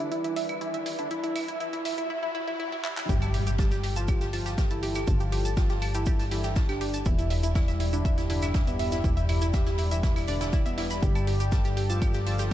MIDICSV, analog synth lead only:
0, 0, Header, 1, 2, 480
1, 0, Start_track
1, 0, Tempo, 495868
1, 1073, Time_signature, 4, 2, 24, 8
1, 12133, End_track
2, 0, Start_track
2, 0, Title_t, "Analog synth lead"
2, 0, Program_c, 0, 81
2, 113, Note_on_c, 0, 64, 98
2, 489, Note_off_c, 0, 64, 0
2, 593, Note_on_c, 0, 64, 93
2, 874, Note_off_c, 0, 64, 0
2, 957, Note_on_c, 0, 62, 91
2, 1055, Note_off_c, 0, 62, 0
2, 1072, Note_on_c, 0, 64, 95
2, 1449, Note_off_c, 0, 64, 0
2, 1553, Note_on_c, 0, 64, 103
2, 1929, Note_off_c, 0, 64, 0
2, 2993, Note_on_c, 0, 67, 101
2, 3369, Note_off_c, 0, 67, 0
2, 3473, Note_on_c, 0, 67, 98
2, 3754, Note_off_c, 0, 67, 0
2, 3836, Note_on_c, 0, 65, 97
2, 4115, Note_off_c, 0, 65, 0
2, 4192, Note_on_c, 0, 65, 94
2, 4473, Note_off_c, 0, 65, 0
2, 4556, Note_on_c, 0, 64, 97
2, 4835, Note_off_c, 0, 64, 0
2, 4913, Note_on_c, 0, 65, 100
2, 5289, Note_off_c, 0, 65, 0
2, 5393, Note_on_c, 0, 65, 101
2, 5674, Note_off_c, 0, 65, 0
2, 5757, Note_on_c, 0, 64, 98
2, 6035, Note_off_c, 0, 64, 0
2, 6113, Note_on_c, 0, 64, 97
2, 6394, Note_off_c, 0, 64, 0
2, 6476, Note_on_c, 0, 62, 97
2, 6755, Note_off_c, 0, 62, 0
2, 6832, Note_on_c, 0, 64, 101
2, 7209, Note_off_c, 0, 64, 0
2, 7312, Note_on_c, 0, 64, 99
2, 7593, Note_off_c, 0, 64, 0
2, 7676, Note_on_c, 0, 62, 99
2, 7955, Note_off_c, 0, 62, 0
2, 8032, Note_on_c, 0, 62, 97
2, 8313, Note_off_c, 0, 62, 0
2, 8396, Note_on_c, 0, 59, 97
2, 8675, Note_off_c, 0, 59, 0
2, 8753, Note_on_c, 0, 67, 103
2, 9129, Note_off_c, 0, 67, 0
2, 9233, Note_on_c, 0, 67, 100
2, 9514, Note_off_c, 0, 67, 0
2, 9597, Note_on_c, 0, 64, 103
2, 9875, Note_off_c, 0, 64, 0
2, 9953, Note_on_c, 0, 62, 99
2, 10234, Note_off_c, 0, 62, 0
2, 10316, Note_on_c, 0, 59, 96
2, 10595, Note_off_c, 0, 59, 0
2, 10672, Note_on_c, 0, 67, 100
2, 11049, Note_off_c, 0, 67, 0
2, 11152, Note_on_c, 0, 67, 101
2, 11433, Note_off_c, 0, 67, 0
2, 11516, Note_on_c, 0, 65, 99
2, 11795, Note_off_c, 0, 65, 0
2, 11873, Note_on_c, 0, 65, 98
2, 12133, Note_off_c, 0, 65, 0
2, 12133, End_track
0, 0, End_of_file